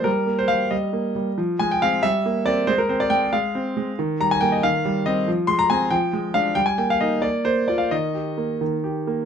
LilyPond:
<<
  \new Staff \with { instrumentName = "Grand piano" } { \time 6/8 \key ees \major \tempo 4. = 92 bes'8. c''16 f''8 ees''4. | r8 aes''16 g''16 f''8 e''4 d''8 | c''16 bes'16 c''16 d''16 g''8 f''4. | r8 bes''16 aes''16 g''16 ees''16 f''4 ees''8 |
r8 c'''16 bes''16 aes''8 g''4 f''8 | g''16 aes''16 g''16 f''16 ees''8 d''8 c''8 d''16 f''16 | ees''4. r4. | }
  \new Staff \with { instrumentName = "Grand piano" } { \clef bass \time 6/8 \key ees \major g8 bes8 g8 g8 bes8 g8 | f8 aes8 <aes c'>8 g8 bes8 <bes c'>8 | aes8 c'8 aes8 aes8 c'8 aes8 | ees8 g8 <g bes>8 ees8 g8 <g c'>8 |
f8 aes8 <aes c'>8 f8 aes8 <aes d'>8 | g8 bes8 <bes ees'>8 bes8 bes8 <bes f'>8 | ees8 g'8 bes8 ees8 g'8 bes8 | }
>>